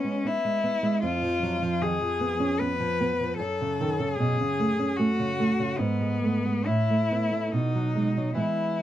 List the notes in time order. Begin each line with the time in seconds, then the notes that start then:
Already playing: B3 C#4
0.04 G#3
0.25 B3 E4
0.45 G#3
0.64 B3
0.83 G#3
1.03 F2 F4
1.23 F3
1.43 F#3
1.62 F3
1.81 D#3 G#4
2.01 F3
2.20 B3
2.40 C#4
2.60 B3 B4
2.80 F3
3.01 B3
3.21 F3
3.38 F#2 A4
3.61 C#3
3.81 D#3
3.99 C#3
4.16 B2 G#4
4.40 C#3
4.60 A3
4.79 C#4
4.97 A3 F#4
5.19 C#3
5.40 A3
5.59 C#3
5.78 G#2 B3
6.01 G#3
6.23 A3
6.45 G#3
6.66 A2 E4
6.90 A3
7.11 B3
7.32 A3
7.51 B2 D#4
7.75 F#3
7.96 G#3
8.17 F#3
8.35 E3 G#3 B3
8.39 E4